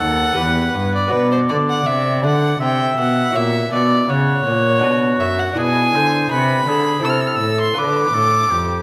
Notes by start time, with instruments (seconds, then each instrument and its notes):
Already playing: lute B3 A4 B4, oboe A4, violin F#5
0.00 lute D#2, cello D#2
0.32 lute B3 G4 B4, oboe B4
0.37 lute E2, cello E2
0.74 lute G2, cello G2
0.95 violin D5
1.08 lute B3 F#4 D5, violin B4, oboe D5
1.12 lute B2, cello B2
1.32 violin C5
1.49 lute D3, cello D3, violin D5
1.70 violin F#5
1.86 cello C3, lute C3, violin E5
2.24 cello D3, lute D3, violin F#5
2.60 cello C3, lute C3, oboe E5, violin G5
2.97 cello B2, lute B2, violin F#5
3.31 cello A#2, lute E4 F#4 C#5
3.35 lute A#2, violin E5
3.71 cello B2, lute B2, violin D5
4.09 cello C#3, lute C#3, violin C#5, oboe F#5
4.46 cello A#2, lute A#2
4.79 cello B2, lute D4 F#4 B4
4.84 lute B2, oboe F#4
5.20 lute F#2, cello F#2, violin E5
5.39 violin F#5
5.53 cello B2, lute D4 E4 B4
5.58 lute B2, oboe G#4, violin G#5
5.94 cello D3, lute D3, oboe C5
6.31 cello C3, lute C3, oboe B4, violin B5
6.67 cello D3, lute D3, oboe G#4
6.99 cello C3, lute C4 E4 A4, oboe A4
7.04 lute C3, violin E6
7.10 violin F6
7.20 violin E6
7.27 violin F6
7.35 violin E6
7.40 cello A2, lute A2
7.61 violin C6
7.74 cello D3, lute B3 F4 B4
7.78 lute D3, oboe B4, violin D6
8.14 cello A2, lute A2, oboe A4
8.51 cello F2, lute F2, oboe G4